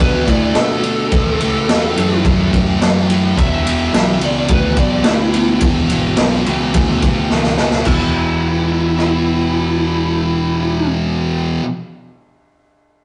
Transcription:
0.00 B2 D3 A3 D4 B4
0.25 A2 D3 A3 D4, kick, ride
0.29 D5
0.54 B2 D3 A3 D4 A4, snare, ride
0.83 D3 A3 D4, ride
1.12 A1 A2 E3 A3, kick, ride
1.40 C#2 A2 A3, ride
1.44 E3
1.68 E2 A2 E3 A3, snare, ride
1.96 F#2 A2 E3 A3, ride
2.23 F#2 A2 E3 A3, kick, ride
2.51 A2 E3 A3, kick, ride
2.81 F#2 A2 E3 A3, snare, ride
3.10 A2 E3 A3, ride
3.37 E1 E2 B2 E3 E5, kick, ride
3.64 E2 B2 E3, ride
3.93 B1 E2 B2 E3, snare, ride
4.20 C#2 E2 B2 E3, ride
4.24 D5
4.48 D2 E2 B2 E3, kick, ride
4.53 B4
4.77 B1 E2 B2 E3 D5, kick, ride
5.04 D2 E2 B2 E3 E4, snare, ride
5.34 E2 B2 E3, ride
5.61 E1 E2 B2 E3, kick, ride
5.90 G#1 E2 B2 E3, ride
6.17 B1 E2 B2, snare, ride
6.21 E3
6.46 C#2 E2 B2 E3, ride
6.74 D2 E2 B2 E3, kick, ride
7.02 E2 B2 E3, kick, ride
7.30 C#2 E2 B2 E3, snare
7.44 snare
7.57 E2 B2 E3, snare
7.71 snare
7.85 E1 E2 E4, kick, crash
7.89 B2 E3
8.98 cross-stick

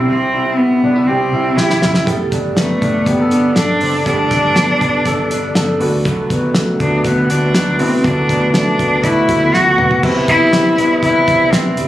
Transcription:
Already playing: C4 E4 G4
0.07 C2 C3 C4
0.34 E4
0.57 B3
0.83 C2 D4
0.96 E4
1.07 C2 C4 G4
1.33 C2 E4
1.57 C2 E4 G4, snare
1.70 snare
1.82 F#1 E4, snare
1.94 snare
2.06 G1 G3 A3 B3 D4 G4 A4, kick, closed hi-hat
2.31 B3 D4 A4, kick, closed hi-hat
2.57 A3 B3, snare, closed hi-hat
2.81 G1 B3 D4 A4, kick, closed hi-hat
3.06 G1 B3 G4, kick, closed hi-hat
3.19 A4
3.31 G1 B3 D4 A4, closed hi-hat
3.56 G1 G3 B3 D4 A4, snare, closed hi-hat
3.81 F#1 B3 C4 D4 A4, open hi-hat
3.94 D4
4.05 G1 G3 A3 B3 D4 A4, kick, closed hi-hat
4.30 B3 D4 A4, kick, snare, closed hi-hat
4.56 B3, snare, closed hi-hat
4.80 G1 B3 D4 A4, kick, closed hi-hat
5.05 G1 A4, kick, closed hi-hat
5.30 G1 B3 D4 A4, closed hi-hat
5.55 G1 G3 B3 D4 A4, snare, closed hi-hat
5.80 D2 D3 A3 B3 D4 F#4, open hi-hat
6.05 D3 F#3 A3 B3 F#4, kick, closed hi-hat
6.29 A3 B3 F#4, kick, closed hi-hat
6.55 A3, snare, closed hi-hat
6.79 D2 A3 B3 D4 F#4, kick, closed hi-hat
7.04 D2 B3 F#4, kick, closed hi-hat
7.29 D2 A3 B3 D4 F#4, closed hi-hat
7.54 D2 F#3 A3 B3 F#4, snare, closed hi-hat
7.78 C2 A3 B3 C4 D4 E4 F#4, open hi-hat
8.04 D2 D3 F#3 A3 B3 D4 F#4, kick, closed hi-hat
8.29 A3 B3 F#4, kick, closed hi-hat
8.54 A3 D4, snare, closed hi-hat
8.78 D2 A3 B3 F#4, kick, closed hi-hat
9.03 D2 E4 F#4, kick, closed hi-hat
9.28 D2 A3 B3 F#4, kick, closed hi-hat
9.42 B3
9.53 D2 F#3 A3 B3 F#4, snare
9.77 B1 A3 B3 F#4, mid tom
9.91 floor tom
10.03 C2 C3 E3 G3 B3 C4 E4 B4, kick, crash
10.28 B3 E4, kick, closed hi-hat
10.52 E3 G3 B3 E4, snare, closed hi-hat
10.77 C2 G3 B3 E4, closed hi-hat
11.02 C2 C3 E3 G3 B3 E4, kick, closed hi-hat
11.28 C2, kick, closed hi-hat
11.52 C2 E3 G3 B3 C4 E4, snare, closed hi-hat
11.77 F#1 G3 B3 E4, closed hi-hat

